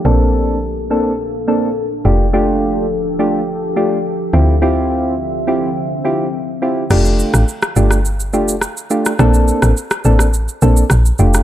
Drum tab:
CC |----------------|----------------|----------------|x---------------|
SH |----------------|----------------|----------------|xxxxxxxxxxxxxxxx|
SD |----------------|----------------|----------------|r--r-r-r----r--r|

CC |----------------|
SH |xxxxxxxxxxxxxxxx|
SD |r--r-r-r----r--r|